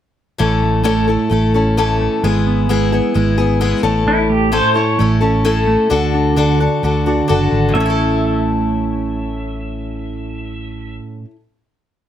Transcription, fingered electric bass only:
0.40 A1
1.31 A1
2.23 G#1
3.15 G#1
3.83 A1
5.00 A1
5.91 D2
6.83 D2
7.30 F#1
7.52 G#1
7.76 A1

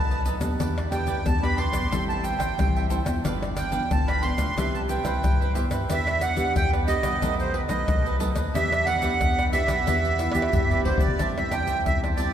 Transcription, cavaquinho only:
0.11 A4 B4 D#5
0.25 D#4 A4 B4 D#5
0.40 A4 B4 D#5
0.60 E4 G4 B4 D5
0.91 E4 G4 B4 D5
1.07 E4 G4 B4 D5
1.43 G4 B4 D5
1.57 E4 G4 B4 D5
1.73 G4 B4 D5
1.91 A4 C5 E5 G5
2.23 A4 C5 E5 G5
2.39 C5 E5 G5
2.76 C5 E5 G5
2.90 A4 C5 E5 G5
3.05 C5 E5 G5
3.24 D4 G4 B4 F5
3.56 D4 G4 B4 F5
3.71 D4 G4 B4 F5
4.08 G4 B4 F5
4.22 D4 G4 B4 F5
4.37 G4 B4 F5
4.56 G4 B4 C5 E5
4.88 G4 B4 C5 E5
5.04 B4 C5 E5
5.41 B4 C5 E5
5.54 G4 B4 C5 E5
5.70 B4 C5 E5
5.89 E4 G4 B4 D5
6.20 E4 G4 B4 D5
6.36 E4 G4 B4 D5
6.72 G4 B4 D5
6.87 E4 G4 B4 D5
7.03 G4 B4 D5
7.22 D#4 A4 B4 D#5
7.53 D#4 A4 B4 D#5
7.68 A4 B4 D#5
8.05 A4 B4 D#5
8.20 D#4 A4 B4 D#5
8.35 A4 B4 D#5
8.54 E4 G4 B4 D5
8.86 E4 G4 B4 D5
9.02 E4 G4 B4 D5
9.38 G4 B4 D5
9.52 E4 G4 B4 D5
9.67 G4 B4 D5
9.86 E4 G4 B4 D5
10.18 E4 G4 B4 D5
10.34 G4 B4 D5
10.70 G4 B4 D5
10.85 E4 G4 B4 D5
10.99 G4 B4 D5
11.19 G4 C5 E5 A5
11.51 G4 C5 E5 A5
11.66 G4 C5 E5 A5
12.03 C5 E5 A5
12.17 G4 C5 E5 A5

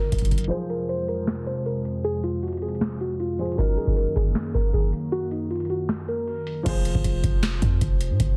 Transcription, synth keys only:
Already playing: A#4
0.51 C5
0.70 A#4
0.89 C5
1.08 A#4
1.47 C5
1.66 A#4
2.04 G#4
2.23 F4
2.43 F#4
2.62 G#4
3.01 F#4
3.20 F4
3.58 A#4
3.77 G#4
3.97 A#4
4.16 G#4
4.54 A#4
4.74 G#4
5.12 F#4
5.31 D#4
5.50 F4
5.70 F#4
6.08 A#4

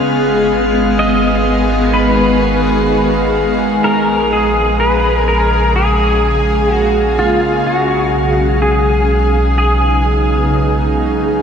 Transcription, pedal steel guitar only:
0.99 D#5
1.94 B4
3.84 A#4
4.33 G#4
4.80 B4
5.17 A#4
5.28 A#4
5.76 G#4
6.75 F#4
7.19 F4
7.66 F#4
8.62 G#4
9.58 G#4

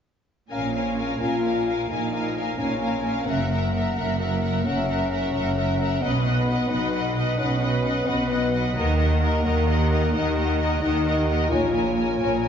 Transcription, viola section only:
0.52 A#4
0.76 A#4
0.98 A#4
1.21 A#4
1.44 A#4
1.68 A#4
1.91 A#4
2.13 A#4
2.36 A#4
2.58 A#4
2.82 A#4
3.05 A#4
3.29 A#4
3.51 A#4
3.75 A#4
3.97 A#4
4.20 A#4
4.43 A#4
4.66 A#4
4.89 A#4
5.13 A#4
5.35 A#4
5.57 A#4
5.81 A#4
6.05 B4
6.27 B4
6.51 B4
6.73 B4
6.95 B4
7.18 B4
7.40 B4
7.63 B4
7.86 B4
8.09 B4
8.32 B4
8.55 B4
8.78 A#4
8.99 A#4
9.22 A#4
9.46 A#4
9.68 A#4
9.92 A#4
10.14 A#4
10.37 A#4
10.60 A#4
10.82 A#4
11.06 A#4
11.29 A#4
11.52 A#4
11.75 A#4
11.97 A#4
12.20 A#4
12.43 A#4

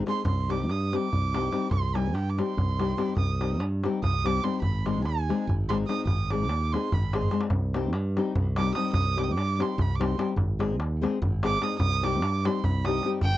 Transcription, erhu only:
0.09 C6
0.28 C6
0.50 D6
0.71 D#6
0.95 D6
1.72 C6
1.96 G#5
2.14 G5
2.30 D6
2.39 C6
3.18 D#6
4.03 D#6
4.25 D6
4.44 C6
4.62 B5
4.86 C6
5.05 G#5
5.69 C6
5.88 D#6
6.07 D#6
6.30 D6
6.72 C6
6.93 B5
7.15 C6
8.57 D6
8.75 D#6
8.94 D#6
9.18 D6
9.24 D#6
9.32 D6
9.62 C6
9.81 B5
9.95 D6
10.01 C6
11.45 D6
11.63 D#6
11.79 D#6
12.04 D6
12.45 C6
12.64 B5
12.85 D#6
13.24 G5

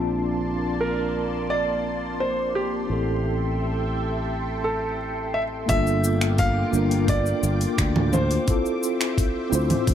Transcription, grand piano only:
0.81 A#4
1.50 D5
2.20 C5
2.55 G4
4.64 A4
5.34 E5
5.69 E5
6.39 F5
7.09 D5
8.14 C5

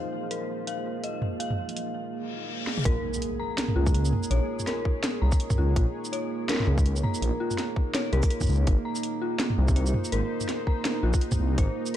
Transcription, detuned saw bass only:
2.85 A#1
3.76 C#2
4.30 A#1
5.22 C2
5.58 C#2
5.76 A#1
6.67 C#2
7.22 A#1
8.13 C2
8.49 C#2
8.67 G#1
9.58 C2
10.12 G#1
11.03 A#1
11.39 C2
11.58 G#1

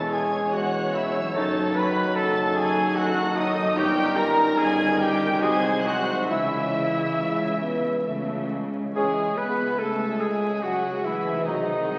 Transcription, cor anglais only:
1.35 C#5
3.78 C#5
5.42 D#5
6.32 E5
8.96 G#4
9.38 B4
9.79 A4
10.19 G#4
10.64 F#4
11.04 E4
11.45 D#4

